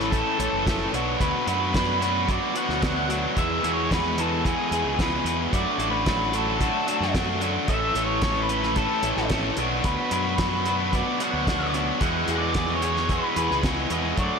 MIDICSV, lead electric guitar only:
0, 0, Header, 1, 2, 480
1, 0, Start_track
1, 0, Tempo, 540541
1, 1068, Time_signature, 4, 2, 24, 8
1, 12780, End_track
2, 0, Start_track
2, 0, Title_t, "Lead electric guitar"
2, 0, Program_c, 0, 29
2, 93, Note_on_c, 0, 69, 66
2, 547, Note_off_c, 0, 69, 0
2, 1074, Note_on_c, 0, 71, 69
2, 1295, Note_off_c, 0, 71, 0
2, 1316, Note_on_c, 0, 71, 75
2, 1759, Note_off_c, 0, 71, 0
2, 1791, Note_on_c, 0, 71, 70
2, 2034, Note_on_c, 0, 74, 84
2, 2037, Note_off_c, 0, 71, 0
2, 2255, Note_off_c, 0, 74, 0
2, 2284, Note_on_c, 0, 78, 76
2, 2723, Note_off_c, 0, 78, 0
2, 3005, Note_on_c, 0, 76, 81
2, 3295, Note_off_c, 0, 76, 0
2, 3317, Note_on_c, 0, 73, 84
2, 3477, Note_off_c, 0, 73, 0
2, 3482, Note_on_c, 0, 71, 85
2, 3718, Note_on_c, 0, 69, 77
2, 3722, Note_off_c, 0, 71, 0
2, 3936, Note_off_c, 0, 69, 0
2, 3960, Note_on_c, 0, 68, 84
2, 4445, Note_on_c, 0, 71, 88
2, 4448, Note_off_c, 0, 68, 0
2, 4771, Note_off_c, 0, 71, 0
2, 4916, Note_on_c, 0, 74, 85
2, 5238, Note_off_c, 0, 74, 0
2, 5241, Note_on_c, 0, 71, 76
2, 5645, Note_on_c, 0, 69, 66
2, 5646, Note_off_c, 0, 71, 0
2, 6320, Note_off_c, 0, 69, 0
2, 6826, Note_on_c, 0, 76, 84
2, 7142, Note_off_c, 0, 76, 0
2, 7146, Note_on_c, 0, 73, 80
2, 7465, Note_on_c, 0, 71, 73
2, 7475, Note_off_c, 0, 73, 0
2, 7776, Note_off_c, 0, 71, 0
2, 7780, Note_on_c, 0, 69, 70
2, 8229, Note_off_c, 0, 69, 0
2, 8744, Note_on_c, 0, 71, 68
2, 8968, Note_off_c, 0, 71, 0
2, 8986, Note_on_c, 0, 71, 74
2, 9461, Note_off_c, 0, 71, 0
2, 9472, Note_on_c, 0, 71, 75
2, 9716, Note_off_c, 0, 71, 0
2, 9719, Note_on_c, 0, 74, 83
2, 9936, Note_off_c, 0, 74, 0
2, 9957, Note_on_c, 0, 78, 80
2, 10399, Note_off_c, 0, 78, 0
2, 10669, Note_on_c, 0, 78, 98
2, 10966, Note_off_c, 0, 78, 0
2, 10993, Note_on_c, 0, 74, 81
2, 11320, Note_off_c, 0, 74, 0
2, 11324, Note_on_c, 0, 73, 77
2, 11640, Note_on_c, 0, 71, 68
2, 11646, Note_off_c, 0, 73, 0
2, 12081, Note_off_c, 0, 71, 0
2, 12607, Note_on_c, 0, 74, 89
2, 12780, Note_off_c, 0, 74, 0
2, 12780, End_track
0, 0, End_of_file